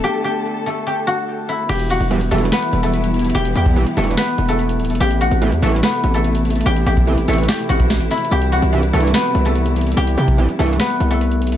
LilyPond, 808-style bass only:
\new Staff \with { instrumentName = "808-style bass" } { \clef bass \time 4/4 \key d \mixolydian \tempo 4 = 145 r1 | e,,8. e,,8. e,,8 r8 e,,4. | e,,8 e,8 r8 e,,8 r8 e,,4 d,,16 e,,16 | a,,8. a,,8 e,16 a,,8 r8 a,,4. |
a,,8 a,,4 a,,8 r8 a,,4 r8 | c,8. c,8. c,8 r8 c,4. | c,8 c8 r8 c,8 r8 c,4 b,,16 c,16 | }